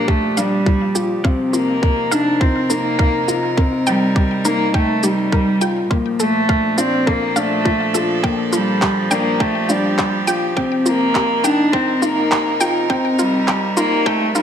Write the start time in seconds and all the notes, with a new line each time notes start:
Already playing: A#2 F3 D4 G4
0.08 A3 G4, kick
0.37 G3 D4 F5, shaker
0.66 F4, kick
0.95 F4 G4, shaker
1.24 C3 C4 F5, kick
1.48 A#4
1.53 A#3 D#4 F4, shaker
1.82 A#4, kick
2.11 D4 D#4 F5, shaker
2.41 C4 F4, kick
2.70 A#3 D#4 A#4, shaker
2.99 F5, kick
3.28 F4, shaker
3.57 C4 A#4, kick
3.76 G3
3.87 G3 G5, shaker
4.16 G4, kick
4.45 A#3 D#4 A#4, shaker
4.74 A3 G5, kick
5.03 G3 D#4 G4, shaker
5.32 A#4, kick
5.61 F4 G5, shaker
5.90 A#2 A#3 F4, kick
5.97 F3
6.20 A3 A4, shaker
6.47 D4 F5, kick
6.78 C4 D4 F4, shaker
6.95 A4
7.07 A#3 A4, kick
7.36 A3 D4 F5, shaker
7.65 F4, kick
7.94 F4 A4, shaker
8.23 A#3 G5, kick
8.53 G3 F4, shaker
8.82 G4, kick, clap
9.11 A#3 D4 G5, shaker
9.27 G4
9.40 A3 G5, kick
9.69 G3 D4 F4, shaker
9.98 G4, kick, clap
10.27 F4 G5, shaker
10.56 C3 C4 G5, kick
10.86 A#3 F4, shaker
10.91 D#4
11.15 G4, kick, clap
11.24 A#4
11.44 D4 D#4 G5, shaker
11.73 C4 G5, kick
12.01 A#3 D#4 F4, shaker
12.31 G4, kick, clap
12.60 F4 G5, shaker
12.90 C4 G5, kick
13.19 G3 F4, shaker
13.29 G3
13.48 G5, kick, clap
13.77 A#3 D#4 F4, shaker
14.06 A3 G5, kick
14.35 G3 D#4 F4, shaker